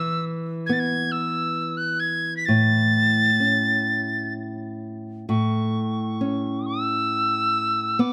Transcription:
Already playing: E3 E6
0.66 B3 G#6
0.73 A6
0.79 G#6
1.12 E6
1.77 F#6
2.00 G#6
2.37 B6
2.46 A2 A6
3.40 C#4
5.29 A2 C#6
6.21 C#4
6.66 E6
7.99 B3 D6

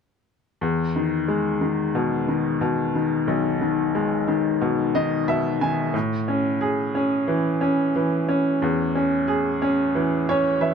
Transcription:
0.61 E2
0.96 D#3
1.28 G#3
1.61 D#3
1.95 B2
2.28 D#3
2.61 B2
2.95 D#3
3.27 B1
3.61 D#3
3.95 G#3
4.28 D#3
4.61 B2
4.95 D#3 D#5
5.28 B2 E5
5.61 D#3 G#5
5.94 A2
6.28 C#4
6.61 G#4
6.95 C#4
7.28 E3
7.61 C#4
7.96 E3
8.29 C#4
8.62 E2
8.95 C#4
9.28 G#4
9.62 C#4
9.95 E3
10.29 C#4 C#5
10.61 E3 E5

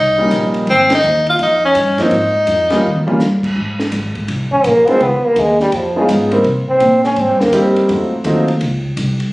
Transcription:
Already playing: C2 D#4
0.18 G3 A#3 C#4 D#4
0.31 A#1, kick, hi-hat pedal, ride
0.54 ride
0.67 G#1 C4, kick, ride
0.90 snare, ride
0.95 D#4
1.03 D#2, hi-hat pedal
1.27 F4, ride
1.39 F2 D#4, kick, ride
1.65 C#4
1.75 G2, kick, hi-hat pedal, ride
1.98 F3 A#3 C4 D#4, muted upright bass stroke, snare, ride
2.02 D#4
2.11 G#2, kick, ride
2.47 F2, kick, hi-hat pedal, ride
2.70 G3 A#3 C#4 F4, snare, ride
2.83 D#2, mid tom
2.96 mid tom
3.07 G3 A#3 C#4 F4, mid tom
3.20 G2, snare, hi-hat pedal
3.43 kick, crash
3.56 G#2, kick
3.80 snare
3.92 G#1, kick, hi-hat pedal, ride
4.15 kick, ride
4.28 C2, kick, ride
4.52 C#4, kick
4.64 A#1 A#3, kick, hi-hat pedal, ride
4.87 G#3 B3 C4 C#4 D#4 F4, muted upright bass stroke, ride
5.00 C#2 B3, kick, ride
5.23 A#3, muted upright bass stroke
5.36 D#2 G#3, kick, hi-hat pedal, ride
5.60 G3, snare
5.72 F2 F3, kick, ride
5.96 C#3 G#3 B3 C#4 D#4 F4
6.08 G#2, kick, hi-hat pedal, ride
6.31 G3 A#3 C4 D#4 A#4, ride
6.44 C3, kick, ride
6.68 C4, muted upright bass stroke
6.80 A#2, kick, hi-hat pedal, ride
7.04 C#4, snare
7.16 G#2 C4, kick, ride
7.28 G2
7.40 D#2 A#3, snare
7.53 G2 G3 A#3 C4 D#4 G4, kick, hi-hat pedal, ride
7.76 ride
7.89 F2 F#3 A3 C4 D#4 F4, kick, ride
8.11 muted upright bass stroke
8.24 D#2 F#3 A3 C4 D#4 F4, kick, hi-hat pedal, ride
8.48 ride
8.61 C#2, kick, ride
8.97 C2, kick, hi-hat pedal, ride
9.20 ride

